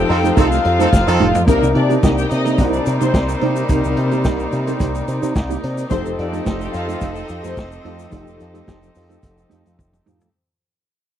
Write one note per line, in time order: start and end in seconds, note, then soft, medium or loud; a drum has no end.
0.00 1.43 F3 medium
0.00 1.44 C4 medium
0.00 1.44 D#4 medium
0.00 1.45 F4 medium
0.00 0.33 G4 loud
0.00 1.44 G4 medium
0.00 1.43 A4 loud
0.00 1.44 A4 medium
0.00 0.33 G5 loud
0.09 0.30 F2 loud
0.09 0.19 D#3 medium
0.09 0.18 C4 medium
0.09 0.19 A4 medium
0.09 muted clean electric guitar stroke soft
0.09 open hi-hat medium
0.24 0.35 A3 medium
0.24 0.35 D#4 medium
0.24 0.37 A4 medium
0.24 closed hi-hat medium
0.24 shaker medium
0.36 0.58 C2 loud
0.36 0.46 D#3 medium
0.36 0.57 A3 medium
0.36 0.46 C4 medium
0.36 0.50 D#4 medium
0.36 1.45 F4 medium
0.36 0.50 G4 medium
0.36 0.46 A4 medium
0.36 1.45 F5 loud
0.36 kick loud
0.36 closed hi-hat medium
0.36 shaker medium
0.51 muted clean electric guitar stroke medium
0.51 snare soft
0.51 shaker medium
0.65 0.85 F2 loud
0.65 muted clean electric guitar stroke soft
0.65 closed hi-hat medium
0.79 0.88 D#3 medium
0.79 0.90 A3 medium
0.79 0.88 C4 medium
0.79 0.91 D#4 medium
0.79 0.91 G4 medium
0.79 0.88 A4 medium
0.79 closed hi-hat soft
0.79 shaker medium
0.92 1.04 F1 loud
0.92 muted clean electric guitar stroke soft
0.92 kick loud
0.92 snare medium
0.92 shaker medium
1.07 1.17 F2 loud
1.07 1.25 D#3 loud
1.07 1.25 C4 loud
1.07 1.25 A4 loud
1.07 muted clean electric guitar stroke soft
1.07 shaker medium
1.20 1.31 F1 medium
1.20 1.41 A3 medium
1.20 1.33 D#4 medium
1.20 1.33 G4 medium
1.20 mid tom medium
1.34 1.45 F2 medium
1.34 muted clean electric guitar stroke soft
1.34 floor tom loud
1.34 shaker medium
1.46 1.59 C2 loud
1.46 3.64 C3 medium
1.46 5.86 C3 medium
1.46 5.86 G3 medium
1.46 1.68 A#3 medium
1.46 1.59 A#3 loud
1.46 5.86 A#3 medium
1.46 3.65 C4 medium
1.46 10.30 D#4 medium
1.46 1.61 D#4 medium
1.46 3.65 D#4 medium
1.46 1.61 G4 loud
1.46 1.59 A#4 loud
1.46 3.66 A#4 medium
1.46 5.86 D5 medium
1.46 kick loud
1.46 closed hi-hat medium
1.46 shaker medium
1.62 1.72 C2 loud
1.62 muted clean electric guitar stroke soft
1.62 shaker medium
1.75 1.96 C3 loud
1.75 1.87 D4 medium
1.75 1.87 D5 loud
1.75 muted clean electric guitar stroke medium
1.75 closed hi-hat medium
1.89 2.02 A#3 medium
1.89 2.02 D#4 medium
1.89 2.03 G4 medium
1.89 closed hi-hat soft
1.89 shaker soft
2.02 2.24 C2 loud
2.02 2.24 A#3 loud
2.02 2.14 D#4 medium
2.02 2.17 D#4 loud
2.02 2.17 G4 loud
2.02 2.15 D#5 medium
2.02 kick loud
2.02 snare loud
2.02 shaker medium
2.17 2.28 G4 medium
2.17 2.28 G5 loud
2.17 muted clean electric guitar stroke soft
2.17 shaker medium
2.30 2.60 C3 loud
2.30 2.53 D#4 loud
2.30 2.53 D#5 loud
2.30 muted clean electric guitar stroke soft
2.30 closed hi-hat medium
2.30 shaker medium
2.45 2.57 A#3 medium
2.45 2.58 D#4 medium
2.45 2.59 A4 medium
2.45 closed hi-hat medium
2.45 shaker medium
2.58 2.79 C2 loud
2.58 5.59 G3 medium
2.58 2.79 A#3 medium
2.58 5.59 D#4 medium
2.58 2.72 D#4 medium
2.58 2.72 G4 loud
2.58 5.59 C5 loud
2.58 kick loud
2.58 closed hi-hat medium
2.58 shaker medium
2.72 2.83 D4 medium
2.72 2.83 D5 medium
2.72 muted clean electric guitar stroke soft
2.72 shaker medium
2.86 2.97 C3 loud
2.86 muted clean electric guitar stroke soft
2.86 closed hi-hat medium
2.86 shaker medium
3.00 3.11 C3 medium
3.00 3.13 A#3 medium
3.00 3.39 C4 medium
3.00 3.13 D#4 medium
3.00 3.14 G4 medium
3.00 3.39 C5 medium
3.00 closed hi-hat soft
3.00 shaker medium
3.14 3.34 C2 loud
3.14 muted clean electric guitar stroke soft
3.14 kick loud
3.14 snare loud
3.14 shaker medium
3.28 muted clean electric guitar stroke soft
3.28 closed hi-hat soft
3.28 shaker medium
3.41 3.62 C3 medium
3.41 3.63 A#3 medium
3.41 3.56 D#4 medium
3.41 3.56 G4 medium
3.41 closed hi-hat medium
3.56 muted clean electric guitar stroke soft
3.56 closed hi-hat soft
3.56 shaker medium
3.68 3.80 C2 loud
3.68 5.86 C3 medium
3.68 3.90 A#3 medium
3.68 5.87 C4 medium
3.68 5.87 D#4 medium
3.68 3.84 D#4 medium
3.68 3.83 G4 loud
3.68 5.88 A#4 medium
3.68 kick loud
3.68 closed hi-hat medium
3.68 shaker medium
3.84 3.94 C2 loud
3.84 muted clean electric guitar stroke medium
3.84 shaker medium
3.97 4.27 C3 loud
3.97 muted clean electric guitar stroke soft
3.97 closed hi-hat medium
4.11 4.24 A#3 medium
4.11 4.25 D#4 medium
4.11 4.25 G4 medium
4.11 closed hi-hat soft
4.11 shaker soft
4.25 4.45 C2 loud
4.25 4.46 A#3 loud
4.25 4.40 D#4 medium
4.25 4.39 G4 loud
4.25 kick loud
4.25 snare loud
4.25 shaker medium
4.39 muted clean electric guitar stroke soft
4.39 shaker medium
4.52 4.73 C3 loud
4.52 muted clean electric guitar stroke soft
4.52 closed hi-hat medium
4.52 shaker medium
4.67 4.79 A#3 medium
4.67 4.80 D#4 medium
4.67 4.81 A4 medium
4.67 closed hi-hat medium
4.67 shaker medium
4.80 5.00 C2 loud
4.80 5.01 A#3 medium
4.80 4.94 D#4 medium
4.80 4.93 G4 loud
4.80 kick loud
4.80 closed hi-hat medium
4.80 shaker medium
4.95 muted clean electric guitar stroke soft
4.95 closed hi-hat soft
4.95 shaker medium
5.08 5.19 C3 medium
5.08 muted clean electric guitar stroke soft
5.08 closed hi-hat medium
5.08 shaker medium
5.22 5.32 C3 loud
5.22 5.34 A#3 soft
5.22 5.34 D#4 medium
5.22 5.35 G4 medium
5.22 closed hi-hat medium
5.22 shaker medium
5.35 5.56 C2 loud
5.35 muted clean electric guitar stroke soft
5.35 kick loud
5.35 snare loud
5.35 shaker medium
5.50 5.62 A#3 medium
5.50 5.62 D#4 medium
5.50 5.63 G4 medium
5.50 closed hi-hat soft
5.50 shaker medium
5.63 5.84 C3 medium
5.63 muted clean electric guitar stroke soft
5.63 closed hi-hat medium
5.78 muted clean electric guitar stroke soft
5.78 closed hi-hat medium
5.78 shaker medium
5.89 6.02 F1 loud
5.89 8.08 F3 medium
5.89 10.30 F3 medium
5.89 6.11 A3 medium
5.89 6.02 C4 loud
5.89 10.03 C4 medium
5.89 10.31 C4 medium
5.89 8.08 D#4 medium
5.89 6.04 D#4 medium
5.89 10.31 G4 medium
5.89 6.03 G4 medium
5.89 8.09 G4 medium
5.89 10.03 A4 medium
5.89 10.30 A4 loud
5.89 8.09 A4 medium
5.89 6.02 C5 loud
5.89 10.03 D#5 loud
5.89 kick loud
5.89 closed hi-hat medium
5.89 shaker medium
6.04 6.15 F1 loud
6.04 muted clean electric guitar stroke soft
6.04 shaker medium
6.18 6.39 F2 loud
6.18 6.31 D4 medium
6.18 6.31 D5 medium
6.18 muted clean electric guitar stroke soft
6.18 closed hi-hat medium
6.32 6.44 A3 medium
6.32 6.44 D#4 medium
6.32 6.45 G4 medium
6.32 closed hi-hat soft
6.32 shaker medium
6.45 6.67 F1 loud
6.45 6.66 A3 medium
6.45 6.60 D#4 medium
6.45 6.58 D#4 medium
6.45 6.59 G4 loud
6.45 6.58 D#5 medium
6.45 kick loud
6.45 snare loud
6.45 shaker medium
6.60 6.72 G4 medium
6.60 6.72 G5 loud
6.60 muted clean electric guitar stroke soft
6.60 shaker medium
6.73 6.94 F2 loud
6.73 6.96 F4 medium
6.73 6.96 F5 loud
6.73 muted clean electric guitar stroke soft
6.73 closed hi-hat medium
6.73 shaker soft
6.88 6.99 A3 medium
6.88 7.00 D#4 medium
6.88 7.01 A4 medium
6.88 closed hi-hat medium
6.88 shaker medium
7.01 7.22 F1 loud
7.01 7.22 A3 medium
7.01 7.15 D#4 medium
7.01 7.15 G4 medium
7.01 kick loud
7.01 closed hi-hat medium
7.01 shaker medium
7.16 7.27 D#4 medium
7.16 7.27 D#5 medium
7.16 muted clean electric guitar stroke medium
7.16 closed hi-hat soft
7.16 shaker soft
7.29 7.40 F2 medium
7.29 muted clean electric guitar stroke soft
7.29 closed hi-hat medium
7.29 shaker medium
7.43 7.54 F2 medium
7.43 7.55 A3 soft
7.43 7.82 C4 medium
7.43 7.56 D#4 medium
7.43 7.56 G4 medium
7.43 7.82 C5 medium
7.43 closed hi-hat medium
7.43 shaker medium
7.57 7.78 F1 loud
7.57 kick loud
7.57 snare loud
7.57 shaker medium
7.71 muted clean electric guitar stroke soft
7.71 shaker medium
7.85 8.05 F2 medium
7.85 8.06 A3 medium
7.85 7.99 D#4 medium
7.85 7.98 G4 medium
7.85 closed hi-hat medium
7.99 muted clean electric guitar stroke soft
7.99 closed hi-hat medium
7.99 shaker medium
8.10 8.24 F1 loud
8.10 10.29 F3 medium
8.10 8.33 A3 medium
8.10 10.30 D#4 medium
8.10 8.26 D#4 medium
8.10 10.30 G4 medium
8.10 8.26 G4 medium
8.10 10.31 A4 medium
8.10 kick loud
8.10 closed hi-hat medium
8.10 shaker medium
8.27 8.37 F1 medium
8.27 muted clean electric guitar stroke soft
8.27 shaker medium
8.40 8.61 F2 loud
8.40 muted clean electric guitar stroke soft
8.40 closed hi-hat medium
8.40 shaker medium
8.54 8.66 A3 medium
8.54 8.66 D#4 medium
8.54 8.67 G4 medium
8.54 closed hi-hat soft
8.54 shaker soft
8.67 8.88 F1 loud
8.67 8.88 A3 loud
8.67 8.81 D#4 medium
8.67 8.81 G4 loud
8.67 kick loud
8.67 snare loud
8.67 shaker medium
8.82 muted clean electric guitar stroke soft
8.82 closed hi-hat soft
8.82 shaker medium
8.95 9.16 F2 loud
8.95 muted clean electric guitar stroke soft
8.95 open hi-hat medium
8.95 shaker soft
9.09 9.21 A3 medium
9.09 9.22 D#4 medium
9.09 9.23 A4 medium
9.09 closed hi-hat medium
9.09 shaker soft
9.23 9.44 F1 loud
9.23 kick loud
9.23 closed hi-hat medium
9.23 shaker medium
9.37 muted clean electric guitar stroke soft
9.37 closed hi-hat soft
9.37 shaker medium
9.49 9.62 F2 medium
9.49 9.71 A3 medium
9.49 9.64 D#4 medium
9.49 9.64 G4 medium
9.49 closed hi-hat medium
9.49 shaker medium
9.65 9.76 F2 medium
9.65 muted clean electric guitar stroke soft
9.65 closed hi-hat soft
9.65 shaker medium
9.78 muted clean electric guitar stroke soft
9.78 kick loud
9.78 high tom medium
9.78 shaker medium
9.93 muted clean electric guitar stroke soft
9.93 mid tom medium
9.93 shaker medium
10.06 10.28 F2 medium
10.06 10.27 A3 medium
10.06 10.20 D#4 medium
10.06 10.19 G4 medium
10.06 mid tom medium
10.06 shaker medium
10.20 muted clean electric guitar stroke soft
10.20 floor tom medium
10.20 shaker medium